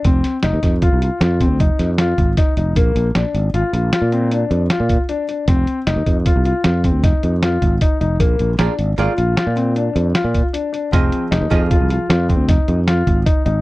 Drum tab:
HH |xxxxxxxxxxxxxx|xxxxxxxxxxxxxx|xxxxxxxxxxxxxx|xxxxxxxxxxxxxx|
SD |-ooo--o--oo-o-|--o---o---o---|--o---o-o-o---|--o---o---o---|
BD |o--oo--oo--oo-|o----------o--|o--oo--oo--oo-|o----------o--|

HH |xxxxxxxxxxxxxx|
SD |--oo--o-o-o---|
BD |o--oo--oo--oo-|